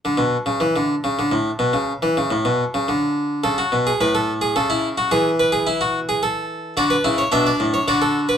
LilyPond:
<<
  \new Staff \with { instrumentName = "Harpsichord" } { \time 3/4 \key d \major \tempo 4 = 107 r2. | r2. | a'16 fis'8 gis'16 b'16 a'8 gis'16 a'16 e'8 fis'16 | gis'8 b'16 gis'16 e'16 fis'8 gis'16 a'4 |
fis'8 e'8 d'4 fis'4 | }
  \new Staff \with { instrumentName = "Harpsichord" } { \clef bass \time 3/4 \key d \major << { d16 b,8 cis16 e16 d8 cis16 d16 a,8 b,16 | cis8 e16 cis16 a,16 b,8 cis16 d4 | r2. | r2. |
d''16 b'8 cis''16 e''16 d''8 cis''16 d''16 a'8 b'16 | } \\ { r2. | r2. | cis8 b,8 a,4 cis4 | e2. |
d8 cis8 b,8 a,8 d4 | } >> }
>>